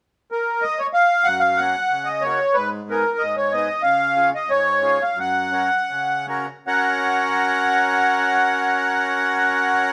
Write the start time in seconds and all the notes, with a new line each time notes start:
0.32 A#4
0.62 D#5
0.79 C#5
0.93 F5
1.24 F#2 F#5
1.40 F5
1.56 A#3 F#5
1.61 C#4 F#4
1.90 C#3
2.05 D#5
2.21 A#3 C#4 C#5
2.25 F#4
2.54 G#2 B4
2.89 B3 D#4 G#4 A#4
3.18 G#2 D#5
3.37 C#5
3.52 B3 D#4 G#4 D#5
3.83 C#3 F5
4.16 C#4 F4 G#4
4.35 D#5
4.48 G#2 C#5
4.81 C#4 F4 G#4
5.02 F5
5.15 F#2
5.20 F#5
5.52 C#4 F#4 A#4
5.90 C#3
6.27 C#4 F#4 A#4
6.67 C#4 F#4 A#4 F#5